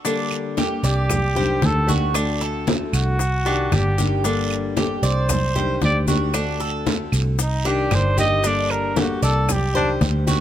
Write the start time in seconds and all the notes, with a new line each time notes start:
0.05 D3 G3 A#3 D4 A4, high bongo, high conga, long guiro, maracas
0.31 high conga, claves, maracas
0.57 G3 A#3 D4 G4 A4, high bongo, high conga, short guiro, maracas
0.83 C2 G4 D5, high bongo, high conga, short guiro, maracas
1.09 muted nylon-string guitar stroke, high bongo, high conga, low conga, long guiro, claves, maracas
1.35 D#3 G3 D4 G4 C5, high bongo, high conga, low conga, maracas
1.61 D2 D#3 G3 D4 G4, high bongo, low bongo, high conga, short guiro, maracas
1.66 A4
1.87 D#3 G3 D4 F#4 G4, high bongo, high conga, short guiro, maracas
2.14 D3 A3 C4 D4 F#4, high bongo, long guiro, claves, maracas
2.41 A4, high bongo, high conga, maracas
2.66 D3 A3 C4 F#4, high bongo, high conga, short guiro, maracas
2.93 C2 F#4, high conga, short guiro, claves, maracas
3.19 muted nylon-string guitar stroke, high bongo, high conga, long guiro, maracas
3.45 D#3 G3 D4 G4, high bongo, high conga, maracas
3.72 G1 G3 D4 G4, high bongo, low bongo, high conga, short guiro, claves, maracas
3.98 D#3 G3 D4 G4, high bongo, high conga, short guiro, maracas
4.24 D3 G3 A#3 D4 A4, high bongo, high conga, long guiro, maracas
4.51 high conga, claves, maracas
4.77 G3 A#3 D4 G4 A4, high bongo, high conga, short guiro, maracas
5.03 C2 C5 D5, high bongo, high conga, short guiro, maracas
5.29 muted nylon-string guitar stroke, high bongo, high conga, low conga, long guiro, claves, maracas
5.55 D#3 G3 D4 G4 C5, high bongo, high conga, low conga, maracas
5.81 D2 D#3 G3 D4 G4 D5, high bongo, low bongo, high conga, short guiro, maracas
6.08 D#3 G3 D4 F#4 G4, high bongo, high conga, short guiro, maracas
6.34 D3 A3 C4 D4 F#4, high bongo, high conga, long guiro, claves, maracas
6.60 A4, high bongo, high conga, maracas
6.86 D3 A3 C4 F#4, high bongo, high conga, short guiro, maracas
7.12 C2, high conga, short guiro, claves, maracas
7.39 D#4, muted nylon-string guitar stroke, high bongo, high conga, long guiro, maracas
7.65 D#3 G3 D4 G4, high bongo, high conga, maracas
7.91 G1 G3 D4 G4 C5, high bongo, low bongo, high conga, short guiro, claves, maracas
8.17 D#3 G3 D4 G4 D#5, high bongo, high conga, short guiro, maracas
8.44 D3 G3 A#3 D4 A4 D5, high bongo, high conga, long guiro, maracas
8.70 A#4, high conga, claves, maracas
8.96 G3 A#3 D4 F#4 G4 A4, high bongo, high conga, short guiro, maracas
9.22 C2 A4 D5, high bongo, high conga, short guiro, maracas
9.49 G4, muted nylon-string guitar stroke, high bongo, high conga, low conga, long guiro, claves, maracas
9.75 D#3 G3 D4 G4 C5, high bongo, high conga, low conga, maracas
10.01 D2 D#3 G3 D4 G4, high bongo, low bongo, high conga, short guiro, maracas
10.27 D#3 G3 D4 F#4 G4, high bongo, high conga, short guiro, maracas